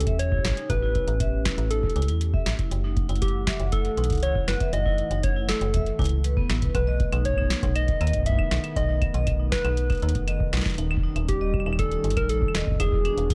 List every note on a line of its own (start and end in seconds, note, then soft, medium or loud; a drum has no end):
0.00 10.74 A3 medium
0.00 2.67 C#4 medium
0.00 2.67 G4 medium
0.00 0.16 A4 loud
0.00 closed hi-hat medium
0.07 0.37 E2 medium
0.07 0.16 E5 loud
0.07 kick loud
0.07 closed hi-hat medium
0.19 0.71 C#5 loud
0.19 closed hi-hat medium
0.32 0.38 E4 medium
0.32 kick loud
0.38 kick medium
0.45 0.52 A1 medium
0.45 kick medium
0.45 snare loud
0.45 closed hi-hat soft
0.51 kick medium
0.57 0.67 D#4 medium
0.57 closed hi-hat medium
0.70 1.00 A1 loud
0.70 1.72 B4 loud
0.70 kick loud
0.70 closed hi-hat medium
0.82 0.89 E4 medium
0.95 1.05 E4 medium
0.95 kick loud
0.95 closed hi-hat soft
1.08 1.50 A1 loud
1.08 closed hi-hat medium
1.20 1.30 E5 loud
1.20 kick loud
1.20 closed hi-hat medium
1.45 1.52 E4 medium
1.45 kick loud
1.45 snare loud
1.58 1.88 A1 medium
1.58 closed hi-hat medium
1.71 1.80 D#4 medium
1.71 2.46 A4 medium
1.71 closed hi-hat medium
1.83 kick loud
1.90 closed hi-hat soft
1.96 2.10 C#2 loud
1.96 2.02 E4 medium
1.96 closed hi-hat soft
2.02 closed hi-hat medium
2.08 2.39 E2 medium
2.08 2.18 E4 medium
2.08 closed hi-hat medium
2.21 closed hi-hat medium
2.34 2.43 E5 medium
2.34 kick loud
2.46 2.54 A1 medium
2.46 snare loud
2.46 closed hi-hat soft
2.59 2.65 E4 medium
2.59 kick loud
2.59 closed hi-hat medium
2.71 3.02 F#1 loud
2.71 6.71 E3 medium
2.71 6.71 F#5 loud
2.71 closed hi-hat medium
2.84 2.94 D#4 medium
2.97 kick loud
2.97 closed hi-hat soft
3.09 3.52 F#1 loud
3.09 3.16 E4 medium
3.09 closed hi-hat soft
3.16 closed hi-hat soft
3.22 3.32 E4 medium
3.22 3.74 G4 medium
3.22 kick loud
3.22 closed hi-hat medium
3.28 closed hi-hat soft
3.47 3.57 E5 loud
3.47 kick loud
3.47 snare loud
3.60 3.90 F#1 loud
3.60 closed hi-hat medium
3.72 3.79 E4 medium
3.72 4.22 A4 loud
3.72 kick loud
3.72 closed hi-hat medium
3.85 closed hi-hat soft
3.97 4.12 B1 loud
3.97 4.07 D#4 medium
3.97 closed hi-hat soft
4.04 closed hi-hat medium
4.10 4.40 C#2 medium
4.10 kick loud
4.10 closed hi-hat medium
4.13 closed hi-hat soft
4.15 closed hi-hat soft
4.18 closed hi-hat soft
4.20 closed hi-hat soft
4.23 4.29 E4 medium
4.23 4.46 C#5 loud
4.23 closed hi-hat medium
4.35 4.45 E4 medium
4.35 kick loud
4.48 4.56 F#1 medium
4.48 4.71 B4 loud
4.48 snare loud
4.48 closed hi-hat soft
4.60 4.70 E5 loud
4.60 kick loud
4.60 closed hi-hat medium
4.73 5.03 F#1 loud
4.73 5.25 D#5 loud
4.73 closed hi-hat medium
4.86 4.92 E4 medium
4.86 kick loud
4.98 closed hi-hat soft
5.11 5.54 F#1 loud
5.11 5.21 D#4 medium
5.11 closed hi-hat soft
5.23 5.48 C#5 loud
5.23 kick loud
5.23 closed hi-hat medium
5.36 5.43 E4 medium
5.49 5.59 E4 medium
5.49 6.46 A4 loud
5.49 snare loud
5.61 5.92 F#1 loud
5.61 closed hi-hat medium
5.74 5.84 E5 loud
5.74 kick loud
5.74 closed hi-hat medium
5.76 kick medium
5.79 kick medium
5.82 kick medium
5.84 kick medium
5.84 closed hi-hat soft
5.99 6.42 C#2 loud
5.99 6.09 E4 loud
5.99 kick loud
5.99 closed hi-hat soft
6.02 closed hi-hat soft
6.04 closed hi-hat soft
6.04 closed hi-hat medium
6.07 closed hi-hat soft
6.24 6.31 B4 medium
6.24 closed hi-hat medium
6.37 6.41 B3 medium
6.37 kick loud
6.49 6.64 A1 medium
6.49 6.53 E4 medium
6.49 snare loud
6.49 closed hi-hat soft
6.62 6.70 C#2 loud
6.62 6.66 B4 medium
6.62 kick loud
6.62 closed hi-hat medium
6.75 7.05 B1 medium
6.75 12.76 D#3 loud
6.75 10.74 B3 medium
6.75 7.27 B4 medium
6.75 kick loud
6.75 closed hi-hat medium
6.75 claves soft
6.87 6.97 D#5 loud
7.00 kick loud
7.00 closed hi-hat soft
7.12 7.55 B1 loud
7.12 7.19 D#4 medium
7.12 closed hi-hat soft
7.12 claves medium
7.25 7.77 C#5 loud
7.25 kick soft
7.25 closed hi-hat medium
7.34 kick medium
7.38 7.48 D#4 medium
7.38 claves medium
7.42 kick medium
7.50 snare loud
7.63 7.93 B1 loud
7.63 7.67 D#4 medium
7.63 kick loud
7.63 closed hi-hat soft
7.76 7.85 D#4 medium
7.76 8.26 D#5 loud
7.76 closed hi-hat medium
7.76 claves medium
7.88 kick loud
7.88 closed hi-hat soft
8.01 8.15 D#2 loud
8.01 8.11 D#5 loud
8.01 closed hi-hat soft
8.01 claves soft
8.07 closed hi-hat medium
8.13 8.44 F#1 medium
8.13 kick medium
8.13 closed hi-hat soft
8.17 kick medium
8.20 kick medium
8.23 8.33 D#4 medium
8.23 kick medium
8.26 8.78 E5 loud
8.26 kick medium
8.26 closed hi-hat medium
8.29 kick medium
8.32 kick loud
8.35 kick loud
8.39 kick loud
8.39 claves medium
8.51 8.59 B1 medium
8.51 8.61 D#4 medium
8.51 snare loud
8.51 closed hi-hat soft
8.64 closed hi-hat medium
8.64 claves medium
8.76 9.07 B1 loud
8.76 8.80 D#4 medium
8.76 9.27 D#5 loud
8.76 kick loud
8.76 closed hi-hat medium
8.89 8.99 D#4 medium
9.02 kick loud
9.02 closed hi-hat soft
9.02 claves medium
9.14 9.57 B1 loud
9.14 9.24 D#5 loud
9.14 closed hi-hat soft
9.27 kick loud
9.27 closed hi-hat medium
9.27 claves medium
9.40 9.46 D#4 medium
9.52 10.49 B4 loud
9.52 kick loud
9.52 snare loud
9.65 9.95 B1 medium
9.65 9.74 D#4 medium
9.65 closed hi-hat soft
9.65 claves medium
9.77 closed hi-hat medium
9.90 9.94 D#4 medium
9.90 kick loud
9.90 closed hi-hat soft
9.90 claves soft
9.92 closed hi-hat soft
9.95 closed hi-hat soft
9.97 closed hi-hat soft
10.00 closed hi-hat soft
10.02 10.17 D#2 loud
10.02 10.12 D#4 medium
10.02 closed hi-hat soft
10.09 closed hi-hat medium
10.15 10.45 F#1 medium
10.15 kick loud
10.15 closed hi-hat medium
10.28 10.38 D#5 loud
10.28 closed hi-hat medium
10.28 claves medium
10.40 kick loud
10.53 10.61 B1 medium
10.53 10.59 D#4 medium
10.53 snare loud
10.53 closed hi-hat soft
10.53 claves medium
10.57 snare medium
10.61 snare medium
10.65 kick loud
10.65 snare medium
10.70 snare soft
10.74 snare soft
10.78 11.08 D#1 medium
10.78 12.78 G3 medium
10.78 12.78 C#4 medium
10.78 10.88 D#4 medium
10.78 closed hi-hat medium
10.91 claves medium
10.97 kick loud
11.03 11.07 D#4 medium
11.16 11.59 D#1 loud
11.16 11.26 D#4 medium
11.16 closed hi-hat soft
11.16 claves medium
11.29 11.81 G4 loud
11.29 kick loud
11.29 closed hi-hat medium
11.41 11.51 D#5 loud
11.54 kick loud
11.54 claves soft
11.60 claves soft
11.66 11.97 D#1 loud
11.66 11.73 D#4 medium
11.66 claves medium
11.73 claves medium
11.79 12.19 A4 loud
11.79 kick loud
11.79 closed hi-hat medium
11.79 claves medium
11.92 12.01 D#4 medium
11.92 closed hi-hat soft
12.04 12.18 G1 loud
12.04 closed hi-hat soft
12.10 closed hi-hat medium
12.17 12.47 A#1 medium
12.17 12.21 D#4 medium
12.17 12.29 A#4 loud
12.17 kick loud
12.17 closed hi-hat medium
12.17 claves medium
12.29 12.39 D#4 medium
12.29 12.82 A4 loud
12.29 closed hi-hat medium
12.42 kick loud
12.48 claves medium
12.55 12.63 D#1 medium
12.55 12.64 D#5 loud
12.55 snare loud
12.55 closed hi-hat soft
12.67 kick loud
12.71 kick medium
12.76 13.34 D4 medium
12.76 kick medium
12.80 13.10 E1 loud
12.80 13.34 E3 medium
12.80 13.34 B3 medium
12.80 12.86 E4 medium
12.80 13.34 F#4 medium
12.80 13.34 G#4 medium
12.80 13.34 G#4 loud
12.80 kick medium
12.80 closed hi-hat medium
12.80 claves medium
12.84 kick soft
12.88 kick soft
12.92 kick loud
13.05 13.15 D4 medium
13.05 closed hi-hat soft
13.05 claves medium
13.18 13.34 E1 loud
13.18 closed hi-hat medium
13.30 13.34 E4 medium
13.30 kick loud
13.30 closed hi-hat medium